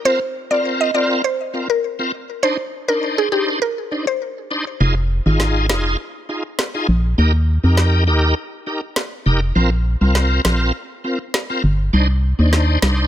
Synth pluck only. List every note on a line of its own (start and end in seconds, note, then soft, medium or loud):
0.05 0.27 C5 loud
0.51 0.61 D5 medium
0.81 0.91 D#5 medium
0.95 1.06 D5 medium
1.24 1.36 C5 medium
1.70 1.80 A#4 medium
2.43 2.65 C5 loud
2.88 2.99 A#4 medium
3.18 3.28 G#4 medium
3.32 3.43 G4 medium
3.62 3.73 A#4 medium
4.07 4.17 C5 medium